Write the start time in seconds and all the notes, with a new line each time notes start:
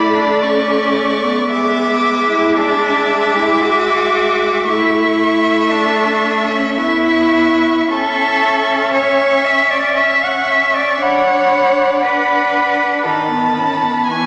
Already playing: A3 E4 D5 B5
0.14 D4
0.42 C#4 C#6
1.23 B3
1.50 G#3 E5 D6
2.29 E4
2.56 D4 E5 D6
3.35 E4
3.62 F#4
4.67 A3 E4 E5 C#6
5.70 D4
6.50 C#4
6.77 B3 E4 E5 C#6
7.90 C#4 A4 E5 C#6
8.93 C#5 E5 C#6
9.45 E5
9.70 D5
9.96 E5 C#6
10.23 F#5
10.50 E5
10.75 D5
11.00 D4 C#5 F#5 B5
12.03 B4 F#5 B5
13.05 D#3 D#4 A5 B5
13.30 B3
13.57 C#4
13.83 B3
14.07 E3 G#5
14.11 C#6